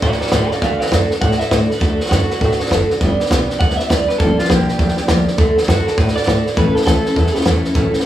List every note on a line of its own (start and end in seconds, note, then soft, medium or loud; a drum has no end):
0.01 0.14 A2 loud
0.01 0.20 A3 medium
0.01 0.21 D4 medium
0.01 0.21 F#4 medium
0.01 0.19 A4 medium
0.01 0.20 D5 medium
0.01 kick loud
0.01 snare soft
0.12 snare soft
0.20 0.33 D4 soft
0.20 0.31 F#4 medium
0.20 0.33 F#4 medium
0.20 0.32 A4 medium
0.20 0.31 D5 medium
0.20 muted upright bass stroke medium
0.20 snare soft
0.27 snare soft
0.32 0.44 A2 medium
0.32 0.51 D3 medium
0.32 0.51 A3 medium
0.32 0.52 D4 medium
0.32 0.52 F#4 medium
0.32 0.51 A4 medium
0.32 0.52 D5 medium
0.32 kick medium
0.32 snare loud
0.32 hi-hat pedal medium
0.50 0.64 F#4 medium
0.50 0.63 A4 medium
0.50 0.62 D5 medium
0.50 0.62 F5 medium
0.50 muted upright bass stroke medium
0.50 snare soft
0.55 0.63 D4 soft
0.62 0.73 D2 loud
0.62 0.81 D3 medium
0.62 0.81 A3 medium
0.62 0.81 D4 medium
0.62 0.81 F#4 medium
0.62 0.79 A4 medium
0.62 0.78 D5 medium
0.62 0.79 F5 medium
0.62 kick loud
0.62 snare soft
0.80 0.92 D4 soft
0.80 0.93 F#4 soft
0.80 0.92 A4 soft
0.80 0.91 D5 medium
0.80 0.93 F5 medium
0.80 muted upright bass stroke medium
0.80 snare soft
0.86 snare soft
0.92 1.03 F#2 loud
0.92 1.11 D3 medium
0.92 1.11 A3 medium
0.92 1.11 D4 medium
0.92 1.10 F#4 medium
0.92 1.08 A4 medium
0.92 1.11 D5 loud
0.92 kick medium
0.92 snare loud
0.92 hi-hat pedal medium
1.10 1.21 D4 soft
1.10 1.22 F#4 soft
1.10 1.21 A4 soft
1.10 muted upright bass stroke medium
1.10 snare soft
1.21 1.33 A2 loud
1.21 1.40 A3 medium
1.21 1.40 D4 medium
1.21 1.41 F#4 medium
1.21 1.39 A4 medium
1.21 1.39 F#5 medium
1.21 kick loud
1.21 snare soft
1.31 snare soft
1.39 1.51 D4 soft
1.39 1.52 F#4 soft
1.39 1.52 A4 medium
1.39 1.51 E5 medium
1.39 muted upright bass stroke medium
1.39 snare soft
1.51 1.63 A2 loud
1.51 1.70 D3 medium
1.51 1.70 A3 medium
1.51 1.70 D4 medium
1.51 1.71 F#4 medium
1.51 1.69 A4 medium
1.51 1.69 D5 medium
1.51 kick medium
1.51 snare loud
1.51 hi-hat pedal medium
1.69 1.79 D4 soft
1.69 1.80 F#4 soft
1.69 1.81 A4 medium
1.69 1.80 B4 medium
1.69 muted upright bass stroke medium
1.69 snare soft
1.79 1.93 D2 loud
1.79 1.99 D3 medium
1.79 1.99 A3 medium
1.79 1.99 D4 medium
1.79 1.99 F#4 medium
1.79 1.98 A4 medium
1.79 1.98 A4 loud
1.79 kick loud
1.79 snare soft
1.98 2.08 F#4 medium
1.98 2.11 F#4 soft
1.98 2.11 A4 medium
1.98 muted upright bass stroke medium
1.98 snare soft
2.02 2.11 D4 soft
2.02 snare soft
2.09 2.23 F#2 loud
2.09 2.30 D3 medium
2.09 2.30 A3 medium
2.09 2.30 D4 medium
2.09 2.68 F#4 loud
2.09 2.29 F#4 medium
2.09 2.27 A4 medium
2.09 kick medium
2.09 snare loud
2.09 hi-hat pedal medium
2.28 2.39 D4 soft
2.28 2.40 F#4 soft
2.28 2.40 A4 soft
2.28 muted upright bass stroke medium
2.28 snare soft
2.39 2.53 A2 loud
2.39 2.59 A3 medium
2.39 2.59 D4 medium
2.39 2.59 F#4 medium
2.39 2.58 A4 medium
2.39 kick loud
2.39 snare soft
2.51 snare soft
2.59 2.71 D4 medium
2.59 2.71 F#4 medium
2.59 2.70 A4 medium
2.59 muted upright bass stroke medium
2.59 snare soft
2.66 snare soft
2.71 2.83 F#1 medium
2.71 2.90 D3 medium
2.71 2.90 A3 medium
2.71 2.90 D4 medium
2.71 2.90 F#4 loud
2.71 2.89 A4 loud
2.71 kick medium
2.71 snare loud
2.71 hi-hat pedal medium
2.90 3.01 D4 soft
2.90 3.02 F#4 medium
2.90 3.01 A4 medium
2.90 muted upright bass stroke medium
2.90 snare soft
3.01 3.12 G1 loud
3.01 3.19 G2 medium
3.01 3.20 D3 loud
3.01 3.20 G3 medium
3.01 3.20 B3 loud
3.01 3.20 D4 loud
3.01 3.18 G4 loud
3.01 kick loud
3.01 snare soft
3.20 3.30 G3 soft
3.20 3.31 B3 soft
3.20 3.30 D4 medium
3.20 3.31 G4 medium
3.20 snare soft
3.26 snare soft
3.31 3.42 B1 loud
3.31 3.49 G2 medium
3.31 3.49 D3 medium
3.31 3.49 G3 medium
3.31 3.50 B3 medium
3.31 3.48 D4 medium
3.31 3.47 G4 loud
3.31 kick medium
3.31 snare loud
3.31 hi-hat pedal medium
3.48 3.58 G3 soft
3.48 3.60 B3 medium
3.48 3.61 D4 soft
3.48 3.60 G4 medium
3.48 muted upright bass stroke medium
3.48 snare soft
3.60 3.72 D2 medium
3.60 3.78 G3 medium
3.60 3.79 B3 medium
3.60 3.78 D4 medium
3.60 3.77 G4 medium
3.60 3.77 F#5 medium
3.60 kick loud
3.60 snare soft
3.70 snare soft
3.77 3.89 G3 soft
3.77 3.89 B3 soft
3.77 3.89 D4 medium
3.77 3.90 G4 medium
3.77 3.89 E5 medium
3.77 muted upright bass stroke medium
3.77 snare soft
3.88 4.02 D2 medium
3.88 4.08 G2 medium
3.88 4.08 D3 medium
3.88 4.08 G3 medium
3.88 4.07 B3 medium
3.88 4.07 D4 medium
3.88 4.06 G4 medium
3.88 4.08 D5 medium
3.88 kick medium
3.88 snare loud
3.88 hi-hat pedal medium
4.07 4.19 G3 soft
4.07 4.20 B3 soft
4.07 4.19 D4 soft
4.07 4.19 G4 medium
4.07 4.18 B4 medium
4.07 muted upright bass stroke medium
4.07 snare soft
4.18 4.32 G1 loud
4.18 4.38 G2 medium
4.18 4.38 D3 medium
4.18 4.38 F3 medium
4.18 4.38 A#3 medium
4.18 4.38 D4 medium
4.18 4.37 G4 medium
4.18 4.37 A4 medium
4.18 kick loud
4.18 snare soft
4.37 4.48 F3 soft
4.37 4.49 A#3 soft
4.37 4.50 D4 soft
4.37 4.49 F4 medium
4.37 4.49 G4 soft
4.37 muted upright bass stroke medium
4.37 snare soft
4.44 snare soft
4.49 4.61 A#1 medium
4.49 4.68 G2 medium
4.49 4.68 D3 medium
4.49 4.68 F3 medium
4.49 4.67 A#3 medium
4.49 4.66 D4 medium
4.49 5.07 G4 loud
4.49 4.66 G4 medium
4.49 kick medium
4.49 snare loud
4.49 hi-hat pedal medium
4.67 4.76 F3 soft
4.67 4.77 A#3 soft
4.67 4.79 D4 soft
4.67 4.79 G4 soft
4.67 muted upright bass stroke medium
4.67 snare soft
4.78 4.90 D2 medium
4.78 4.97 F3 medium
4.78 4.97 A#3 medium
4.78 4.97 D4 medium
4.78 4.95 G4 medium
4.78 kick loud
4.78 snare soft
4.88 snare soft
4.97 5.07 F3 medium
4.97 5.07 A#3 medium
4.97 5.08 D4 medium
4.97 5.08 G4 medium
4.97 muted upright bass stroke medium
4.97 snare soft
5.08 5.20 D2 medium
5.08 5.27 G2 medium
5.08 5.27 D3 medium
5.08 5.27 F3 loud
5.08 5.27 A#3 medium
5.08 5.27 D4 medium
5.08 5.25 G4 loud
5.08 kick medium
5.08 snare loud
5.08 hi-hat pedal medium
5.27 5.37 F3 medium
5.27 5.38 A#3 medium
5.27 5.37 D4 medium
5.27 5.38 G4 medium
5.27 muted upright bass stroke medium
5.27 snare soft
5.37 5.50 D2 medium
5.37 5.56 D3 medium
5.37 5.57 A3 loud
5.37 5.57 D4 medium
5.37 5.56 F#4 medium
5.37 5.54 A4 loud
5.37 kick loud
5.37 snare soft
5.55 5.67 D4 soft
5.55 5.68 F#4 medium
5.55 5.67 A4 medium
5.55 muted upright bass stroke medium
5.55 snare soft
5.63 5.86 D3 medium
5.63 snare soft
5.68 5.80 F#2 loud
5.68 5.87 A3 medium
5.68 5.87 D4 medium
5.68 5.86 F#4 medium
5.68 5.88 F#4 loud
5.68 5.84 A4 medium
5.68 kick medium
5.68 snare loud
5.68 hi-hat pedal medium
5.86 5.97 D4 soft
5.86 5.98 F#4 soft
5.86 5.97 A4 medium
5.86 5.98 A4 medium
5.86 muted upright bass stroke medium
5.86 snare soft
5.97 6.09 A2 loud
5.97 6.16 A3 medium
5.97 6.16 D4 medium
5.97 6.17 F#4 medium
5.97 6.15 A4 medium
5.97 6.16 B4 loud
5.97 kick loud
5.97 snare soft
6.08 snare soft
6.16 6.26 D4 soft
6.16 6.26 F#4 soft
6.16 6.27 A4 medium
6.16 6.56 D5 loud
6.16 muted upright bass stroke medium
6.16 snare soft
6.22 6.45 D3 medium
6.22 snare soft
6.27 6.39 A2 medium
6.27 6.46 A3 medium
6.27 6.46 D4 medium
6.27 6.45 F#4 medium
6.27 6.44 A4 medium
6.27 kick medium
6.27 snare loud
6.27 hi-hat pedal medium
6.45 6.57 D4 soft
6.45 6.57 F#4 soft
6.45 6.57 A4 medium
6.45 muted upright bass stroke medium
6.45 snare soft
6.56 6.69 A1 loud
6.56 6.75 A2 medium
6.56 6.75 E3 medium
6.56 6.75 A3 loud
6.56 6.75 C#4 medium
6.56 6.75 E4 medium
6.56 6.73 A4 loud
6.56 6.75 B4 medium
6.56 kick loud
6.56 snare soft
6.75 6.86 A3 soft
6.75 6.86 C#4 soft
6.75 6.86 E4 soft
6.75 6.86 A4 soft
6.75 6.85 A4 medium
6.75 muted upright bass stroke medium
6.75 snare soft
6.81 snare soft
6.86 6.98 C#2 medium
6.86 7.04 A2 medium
6.86 7.05 E3 medium
6.86 7.05 A3 medium
6.86 7.04 C#4 medium
6.86 7.04 E4 medium
6.86 7.43 A4 loud
6.86 7.03 A4 medium
6.86 kick medium
6.86 snare loud
6.86 hi-hat pedal medium
7.04 7.14 A3 soft
7.04 7.15 C#4 soft
7.04 7.16 E4 soft
7.04 7.16 A4 soft
7.04 muted upright bass stroke medium
7.04 snare soft
7.15 7.28 E2 loud
7.15 7.34 A3 medium
7.15 7.33 C#4 medium
7.15 7.32 E4 medium
7.15 7.31 A4 medium
7.15 kick loud
7.15 snare soft
7.26 snare soft
7.32 7.44 A3 soft
7.32 7.45 C#4 medium
7.32 7.45 E4 medium
7.32 7.45 A4 medium
7.32 muted upright bass stroke medium
7.32 snare soft
7.41 7.63 A2 medium
7.41 snare soft
7.45 7.57 E2 medium
7.45 7.64 E3 medium
7.45 7.64 A3 medium
7.45 7.64 C#4 loud
7.45 7.64 E4 loud
7.45 7.62 A4 medium
7.45 kick medium
7.45 snare loud
7.45 hi-hat pedal medium
7.63 7.74 A3 soft
7.63 7.74 C#4 medium
7.63 7.74 E4 medium
7.63 7.75 A4 medium
7.63 muted upright bass stroke medium
7.63 snare soft
7.74 7.87 A1 loud
7.74 7.93 A2 medium
7.74 7.93 E3 medium
7.74 7.93 A3 medium
7.74 7.92 C#4 loud
7.74 7.90 E4 loud
7.74 7.89 A4 loud
7.74 kick loud
7.74 snare soft
7.91 8.03 A3 soft
7.91 8.03 C#4 soft
7.91 8.04 E4 soft
7.91 8.03 A4 soft
7.91 muted upright bass stroke medium
7.91 snare soft
8.00 snare soft